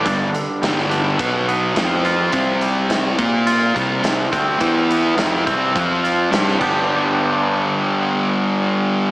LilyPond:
<<
  \new Staff \with { instrumentName = "Clean electric guitar" } { \clef bass \time 4/4 \key g \major \tempo 4 = 105 <g, g d'>8 d8 g8 d'8 b,8 b8 f8 f'8 | c8 g8 c8 bes,8 f'8 c8 c8 c'8 | e8 b8 c8 c'8 f8 f'8 c8 <g b d' g'>8~ | <g b d' g'>1 | }
  \new Staff \with { instrumentName = "Distorted electric guitar" } { \clef bass \time 4/4 \key g \major <g, d>8 r8 <g, d g>4 <b, fis b>4 <f c' f'>4 | <c g c'>4. <bes f' bes'>4 <c g c'>8 <c g>8 <d a d'>8 | <e b e'>4 <f c' f'>8 <c g c'>8 <f c' f'>4 <g d' g'>8 <g, d g b d'>8~ | <g, d g b d'>1 | }
  \new Staff \with { instrumentName = "Fingered electric bass" } { \clef bass \time 4/4 \key g \major g,,8 r8 g,,4 b,,4 f,4 | c,4. bes,4 c,8 c,8 d,8 | e,4 f,8 c,8 f,4 g,8 g,,8~ | g,,1 | }
  \new DrumStaff \with { instrumentName = "Drums" } \drummode { \time 4/4 <hh bd>8 hh8 <hh sn>16 sn16 hh8 <hh bd>8 hh8 <hh sn>8 hh8 | <hh bd>8 hh8 <hh sn>8 <hh bd>8 hh8 <hh bd>8 <hh sn>8 <hh bd>8 | <hh bd>8 hh8 <hh sn>8 <hh bd>8 <hh bd>8 hh8 <hh sn>16 sn16 <cymc bd>8 | r4 r4 r4 r4 | }
>>